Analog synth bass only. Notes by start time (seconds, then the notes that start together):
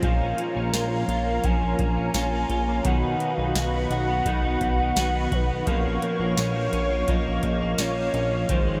0.03 A#1
0.56 A#1
0.73 A#1
1.08 A#1
1.44 A#1
1.79 A#1
2.14 A#1
2.50 A#1
2.85 B1
3.38 B1
3.55 B1
3.91 B1
4.26 B1
4.61 B1
4.97 B1
5.32 B1
5.67 A#1
6.20 A#1
6.38 A#1
6.73 A#1
7.08 A#1
7.43 A#1
7.78 A#1
8.14 A#1
8.49 G#1